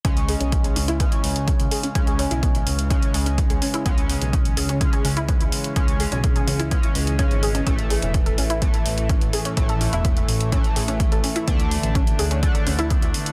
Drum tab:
HH |xxoxxxoxxxoxxxox|xxoxxxoxxxoxxxox|xxoxxxoxxxoxxxox|xxoxxxoxxxoxxxox|
BD |o---o---o---o---|o---o---o---o---|o---o---o---o---|o---o---o---o---|

HH |xxoxxxoxxxoxxxox|xxoxxxoxxxoxxxox|xxoxxxoxxxoxxxox|
BD |o---o---o---o---|o---o---o---o---|o---o---o---o---|